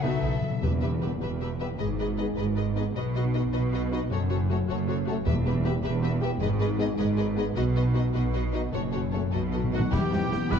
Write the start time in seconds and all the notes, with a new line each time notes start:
0.02 B1 B2 D#4 F#4 A4 B4 E5
0.11 B2
0.19 B1 B2 D#4 E4
0.24 B2 F#4
0.34 B2
0.42 B2 A4 D#5
0.50 B2
0.62 E1 E2 G4 B4 E5
0.81 E4 G4 B4 E5
1.01 G3 B3 G4 B4 E5
1.21 E1 E2 G4 B4 E5
1.41 G4 B4 E5
1.60 G3 B3 G4 B4 E5
1.78 G#1 G#2 G#4 B4 D#5
1.99 D#4 G#4 B4 D#5
2.17 B3 D#4 G#4 B4 D#5
2.36 G#1 G#2 G#4 B4 D#5
2.56 G#4 B4 D#5
2.75 B3 D#4 G#4 B4 D#5
2.95 B1 B2 F#4 B4 D#5
3.14 D#4 F#4 B4 D#5
3.34 B3 D#4 F#4 B4 D#5
3.52 B1 B2 F#4 B4 D#5
3.72 F#4 B4 D#5
3.91 B3 D#4 F#4 B4 D#5
4.10 F#1 F#2 F#4 A4 C#5
4.29 C#4 F#4 A4 C#5
4.49 A3 F#4 A4 C#5
4.68 F#1 F#2 F#4 A4 C#5
4.87 F#4 A4 C#5
5.06 A3 F#4 A4 C#5
5.25 E1 E2 G4 B4 E5
5.45 E4 G4 B4 E5
5.64 B3 G4 B4 E5
5.83 E1 E2 G4 B4 E5
6.02 G4 B4 E5
6.21 B3 G4 B4 E5
6.40 G#1 G#2 G#4 B4 D#5
6.59 D#4 G#4 B4 D#5
6.78 B3 D#4 G#4 B4 D#5
6.97 G#1 G#2 G#4 B4 D#5
7.17 G#4 B4 D#5
7.36 B3 D#4 G#4 B4 D#5
7.55 B1 B2 F#4 B4 D#5
7.75 D#4 F#4 B4 D#5
7.94 B3 D#4 F#4 B4 D#5
8.13 B1 B2 F#4 B4 D#5
8.33 F#4 B4 D#5
8.52 B3 D#4 F#4 B4 D#5
8.72 F#1 F#2 F#4 A4 C#5
8.91 C#4 F#4 A4 C#5
9.12 A3 C#4 F#4 A4 C#5
9.32 B1 B2 F#4 A4 D#5
9.40 B2
9.48 B2 D#5
9.53 B2 D#4 F#4 A4
9.64 B2
9.72 B2 A3 D#4 F#4 A4 D#5 F#5
9.80 B2
9.91 E1 E2 E3 G3 B3 E4 G4 G5, concert bass drum, snare, crash
10.11 E1 E2 G3 C4 D#4 E4 F#4, snare
10.31 E1 E2 G3 B3 E4 G4, snare
10.50 E1 E2 G3 E4 G4 B4 E5 B5, concert bass drum, snare